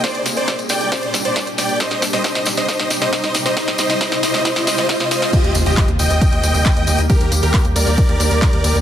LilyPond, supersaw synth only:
\new Staff \with { instrumentName = "Supersaw synth" } { \time 4/4 \key ees \major \tempo 4 = 136 <c'' d''>8 r16 <c'' d''>8 r16 <d'' g''>8 c''8 r16 <c'' d''>8 r16 <d'' g''>8 | <c'' ees''>8 r16 <c'' ees''>16 r8. <c'' ees''>16 <c'' ees''>8 r16 <c'' ees''>16 c''8 r16 <c'' ees''>16 | <c'' ees''>8 <c'' ees''>8 <c'' ees''>8 <c'' ees''>8 <c'' ees''>8 <c'' ees''>8 <c'' ees''>8 <c'' ees''>8 | <g' ees''>8 r16 <g' ees''>8 r16 <ees'' g''>2~ <ees'' g''>16 r16 |
<g' bes'>8 r16 <g' bes'>8 r16 <bes' d''>2~ <bes' d''>16 r16 | }